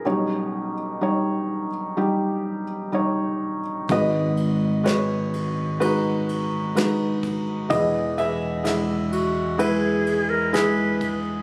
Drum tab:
RD |--------|xxxxxxxx|xxxxxxxx|
SD |--------|--o---o-|--o---o-|
BD |--------|o------o|o------o|